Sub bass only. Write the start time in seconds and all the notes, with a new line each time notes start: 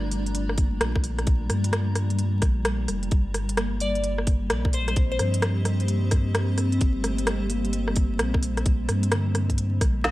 Already playing: G1
0.81 A#1
1.50 G2
2.42 A#1
2.89 F1
3.12 G1
4.51 A#1
5.20 G2
6.81 G1
8.20 A#1
8.89 G2
9.81 A#1